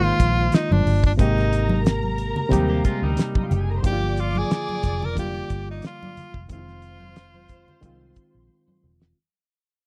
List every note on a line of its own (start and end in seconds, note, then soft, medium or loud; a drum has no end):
0.00 0.11 G#1 medium
0.00 1.21 D#3 medium
0.00 1.18 G#3 medium
0.00 1.20 A#3 medium
0.00 0.56 F4 loud
0.00 1.21 F4 medium
0.00 0.82 C5 medium
0.00 0.82 C6 loud
0.00 muted conga soft
0.20 0.48 A#1 medium
0.20 kick medium
0.20 closed hi-hat medium
0.52 0.73 D#4 medium
0.52 snare medium
0.52 closed hi-hat medium
0.52 muted conga soft
0.71 0.84 G1 medium
0.71 1.04 D4 medium
0.71 muted conga soft
0.71 high conga medium
0.86 1.14 G1 medium
0.86 open hi-hat medium
0.86 low conga medium
1.04 1.12 D4 medium
1.04 kick medium
1.17 2.32 G#1 loud
1.17 2.37 C3 medium
1.17 2.37 G#3 medium
1.17 2.38 A#3 medium
1.17 1.82 D#4 medium
1.17 2.39 G4 medium
1.17 3.25 A#4 medium
1.17 3.25 A#5 loud
1.17 kick loud
1.17 closed hi-hat medium
1.17 muted conga soft
1.38 snare soft
1.38 muted conga soft
1.53 closed hi-hat medium
1.69 high conga medium
1.85 snare loud
1.85 closed hi-hat medium
1.85 muted conga soft
2.03 high conga soft
2.18 closed hi-hat medium
2.36 low conga medium
2.49 2.80 D#2 medium
2.49 3.69 C3 medium
2.49 3.70 G3 medium
2.49 2.69 G3 medium
2.49 3.71 A#3 medium
2.49 2.69 D#4 medium
2.49 kick medium
2.49 closed hi-hat medium
2.49 high conga medium
2.53 3.71 G4 medium
2.68 2.84 A#3 medium
2.68 2.84 G4 medium
2.68 muted conga soft
2.84 3.02 G#3 medium
2.84 3.02 F4 medium
2.84 kick medium
2.84 closed hi-hat medium
3.02 3.16 D2 medium
3.02 3.81 G3 medium
3.02 3.80 D#4 medium
3.17 snare medium
3.17 closed hi-hat medium
3.17 muted conga soft
3.35 3.44 D#4 medium
3.35 3.44 D#5 medium
3.35 kick medium
3.35 high conga medium
3.44 3.51 F4 medium
3.44 3.51 F5 medium
3.51 3.80 F#1 loud
3.51 3.60 G4 medium
3.51 3.60 G5 medium
3.51 closed hi-hat medium
3.51 low conga medium
3.60 3.69 G#4 medium
3.60 3.69 G#5 medium
3.70 3.77 A#4 medium
3.70 3.77 A#5 medium
3.77 3.85 C5 medium
3.77 3.85 C6 medium
3.82 4.42 G1 loud
3.82 5.02 D3 medium
3.82 5.03 F3 medium
3.82 5.03 A#3 medium
3.82 3.92 D#4 medium
3.82 4.22 G4 medium
3.82 6.13 D5 medium
3.82 6.13 D6 loud
3.82 kick loud
3.82 closed hi-hat medium
3.93 5.07 F4 medium
4.03 muted conga soft
4.17 4.40 F4 medium
4.17 closed hi-hat medium
4.35 5.07 G#4 loud
4.35 high conga medium
4.51 snare loud
4.51 closed hi-hat medium
4.51 muted conga soft
4.69 muted conga soft
4.69 high conga soft
4.83 5.41 F1 medium
4.83 kick medium
4.83 closed hi-hat medium
5.02 5.19 A#4 loud
5.02 low conga medium
5.16 6.35 D3 medium
5.16 6.36 G3 medium
5.16 6.37 A#3 medium
5.16 6.37 F4 medium
5.16 5.66 G4 loud
5.16 kick medium
5.16 closed hi-hat medium
5.16 muted conga soft
5.16 high conga medium
5.35 muted conga soft
5.50 5.79 G1 medium
5.50 kick medium
5.50 closed hi-hat medium
5.71 5.84 D#4 medium
5.82 snare medium
5.82 closed hi-hat medium
5.82 muted conga soft
5.86 6.47 F4 medium
6.03 muted conga soft
6.03 high conga medium
6.17 muted fingered electric bass stroke soft
6.17 closed hi-hat medium
6.17 low conga medium
6.34 6.48 F1 medium
6.34 kick medium
6.48 7.64 F1 loud
6.48 7.68 D#3 medium
6.48 7.69 G#3 medium
6.48 7.70 C4 medium
6.48 6.58 E4 medium
6.48 8.80 C5 medium
6.48 8.79 C6 loud
6.48 kick loud
6.48 closed hi-hat medium
6.53 8.47 F4 loud
6.59 7.74 F4 medium
6.69 snare soft
6.69 muted conga soft
6.82 closed hi-hat medium
7.01 high conga medium
7.16 snare loud
7.16 closed hi-hat medium
7.16 muted conga soft
7.34 muted conga soft
7.34 high conga soft
7.49 kick medium
7.49 closed hi-hat medium
7.68 low conga medium
7.81 8.12 C2 medium
7.81 9.01 D#3 medium
7.81 9.02 G#3 medium
7.81 9.03 C4 medium
7.81 kick medium
7.81 closed hi-hat loud
7.81 muted conga soft
7.81 high conga medium
7.86 9.04 F4 medium
8.01 muted conga soft
8.16 kick medium
8.16 closed hi-hat medium
8.35 8.48 A#1 medium
8.48 muted conga soft
8.68 muted conga soft
8.68 high conga medium
8.83 9.12 E1 medium
8.83 low conga medium
9.02 snare medium